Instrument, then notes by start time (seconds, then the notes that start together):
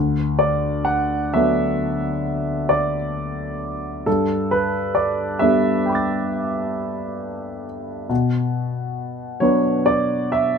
grand piano
Already playing: D2
0.39 D5
0.85 F#5
1.34 F#3 B3 D4 A4 E5
2.69 D5
4.06 G2 A4
4.51 B4
4.95 D5
5.39 G3 B3 D4 A4 E5
5.86 G5 B5
5.92 D6 A6
8.09 B2
9.40 F#3 B3 D4 B4 C#5
9.86 D5
10.32 E5